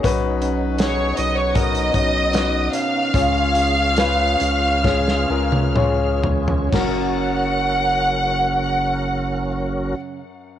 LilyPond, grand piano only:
<<
  \new Staff \with { instrumentName = "Grand piano" } { \time 4/4 \key fis \major \tempo 4 = 67 << { <gis' cis''>16 r2. r8. | r1 | r1 | } \\ { <cis' dis' fis' b'>4 <cis' dis' fis' gis'>4 <cis' dis' fis' ais'>8 <cis' dis' fis' cis''>8 <cis' dis' fis' b'>4 | <cis' eis' gis' cis''>4 <cis' eis' gis' b'>4 <cis' eis' gis' cis''>8 <cis' eis' gis' ais'>8 <cis' eis' gis' cis''>4 | <cis' fis' ais'>1 | } >> }
  \new Staff \with { instrumentName = "Grand piano" } { \clef bass \time 4/4 \key fis \major b,4. r2 r8 | cis4. r2 r8 | fis,1 | }
>>